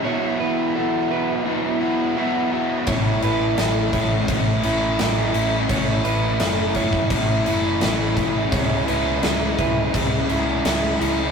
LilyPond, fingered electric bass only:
\new Staff \with { instrumentName = "Fingered electric bass" } { \clef bass \time 4/4 \key a \major \tempo 4 = 85 r1 | a,,8 a,,8 a,,8 a,,8 a,,8 a,,8 a,,8 a,,8 | a,,8 a,,8 fis,,4 a,,8 fis,,8 a,,4 | cis,8 cis,8 cis,8 cis,8 cis,8 cis,8 cis,8 cis,8 | }